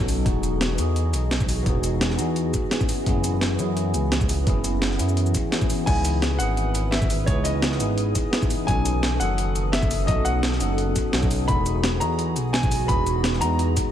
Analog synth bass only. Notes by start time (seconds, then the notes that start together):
Already playing: B1
0.26 E1
0.53 E1
0.78 E2
1.13 B1
1.66 E1
1.93 E1
2.19 E2
3.06 F#1
3.33 F#1
3.59 F#2
3.94 C#2
4.47 F#1
4.74 F#1
5.00 F#2
5.87 C#2
6.14 C#2
6.40 G#1
6.75 G#1
7.28 C#2
7.54 C#2
7.80 G#1
8.68 B1
8.95 B1
9.21 F#1
9.56 F#1
10.08 B1
10.35 B1
10.61 F#1
11.13 B1
11.49 E1
11.75 E1
12.01 E2
12.36 B1
12.89 E1
13.16 E1
13.41 E2